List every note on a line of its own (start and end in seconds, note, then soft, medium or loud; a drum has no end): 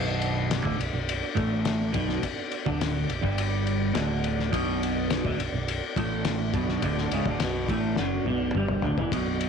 0.00 0.62 B0 medium
0.00 0.62 B1 medium
0.00 0.63 B2 medium
0.00 9.49 B3 medium
0.00 9.49 D4 medium
0.00 9.49 F#4 medium
0.00 9.49 D5 medium
0.22 ride medium
0.51 snare loud
0.51 ride loud
0.63 0.79 D1 medium
0.63 0.77 D2 medium
0.63 0.78 D3 medium
0.63 kick loud
0.78 0.93 B0 medium
0.78 0.92 B1 medium
0.78 ride medium
0.93 1.21 B0 medium
0.93 1.17 B1 medium
1.09 ride loud
1.35 1.91 A1 medium
1.35 1.92 A2 medium
1.35 1.93 A3 medium
1.35 kick medium
1.35 ride medium
1.65 snare loud
1.65 ride medium
1.93 2.21 B0 medium
1.93 2.21 B1 medium
1.93 2.22 B2 loud
1.93 kick loud
1.93 ride medium
2.09 snare soft
2.22 muted clean electric guitar stroke medium
2.22 muted fingered electric bass stroke soft
2.22 kick medium
2.22 ride medium
2.52 ride medium
2.66 3.07 D1 medium
2.66 3.08 D2 medium
2.66 3.09 D3 loud
2.66 kick loud
2.81 snare loud
2.81 ride loud
3.09 3.23 B0 medium
3.09 3.21 B1 medium
3.09 ride medium
3.21 3.92 G1 medium
3.21 3.93 G2 medium
3.21 3.94 G3 medium
3.21 kick medium
3.38 ride medium
3.67 ride medium
3.94 4.49 D1 loud
3.94 4.51 D2 medium
3.94 4.51 D3 medium
3.94 snare loud
3.94 ride medium
4.24 ride medium
4.40 snare soft
4.51 5.21 B0 medium
4.51 5.23 B1 medium
4.51 5.23 B2 loud
4.51 kick medium
4.51 ride medium
4.83 ride medium
5.10 snare loud
5.10 ride medium
5.24 5.38 D1 medium
5.24 5.38 D2 medium
5.24 5.38 D3 medium
5.24 kick medium
5.38 5.51 B0 medium
5.38 5.52 B1 medium
5.38 ride medium
5.52 5.79 B0 medium
5.52 5.76 B1 medium
5.68 ride medium
5.96 6.50 A1 medium
5.96 6.53 A2 medium
5.96 6.53 A3 medium
5.96 kick loud
5.96 ride medium
6.25 snare loud
6.25 ride medium
6.54 6.81 B0 medium
6.54 6.82 B1 loud
6.54 6.82 B2 loud
6.54 kick loud
6.54 ride medium
6.69 snare soft
6.82 7.09 D1 medium
6.82 7.11 D2 loud
6.82 7.11 D3 loud
6.82 kick loud
6.82 ride medium
6.98 snare soft
7.12 7.25 C#1 medium
7.12 7.25 C#2 medium
7.12 7.26 C#3 loud
7.12 ride medium
7.26 7.39 D1 medium
7.26 7.40 D2 medium
7.26 7.40 D3 loud
7.26 kick loud
7.40 7.67 B0 medium
7.40 7.68 B1 medium
7.40 7.68 B2 loud
7.40 snare loud
7.40 ride medium
7.69 7.95 A1 medium
7.69 7.96 A2 medium
7.69 7.97 A3 medium
7.69 kick loud
7.69 ride medium
7.96 8.24 F#1 medium
7.96 8.25 F#2 medium
7.96 8.25 F#3 loud
7.96 snare medium
8.24 8.51 B0 medium
8.24 8.53 B1 medium
8.24 8.54 B2 medium
8.24 high tom medium
8.54 8.81 G1 medium
8.54 8.83 G2 medium
8.54 8.83 G3 medium
8.54 mid tom medium
8.68 mid tom medium
8.82 8.96 D1 medium
8.82 8.96 D2 medium
8.82 8.97 D3 loud
8.82 floor tom medium
8.97 9.10 E1 medium
8.97 9.11 E2 medium
8.97 9.11 E3 medium
8.97 floor tom medium
9.12 9.49 B0 medium
9.12 9.49 B1 medium
9.12 9.49 B2 medium
9.12 kick loud
9.12 ride medium
9.41 ride medium